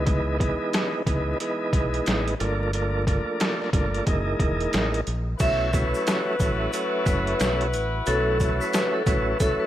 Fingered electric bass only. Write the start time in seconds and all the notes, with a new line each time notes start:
Already playing: C#2
1.07 C#2
1.73 B1
2.07 A1
2.41 G1
3.73 G1
4.07 F#1
4.40 E1
4.74 A1
5.07 A#1
5.40 B1
6.40 A1
7.07 F#1
7.41 B1
7.74 A1
8.07 B1
9.07 A1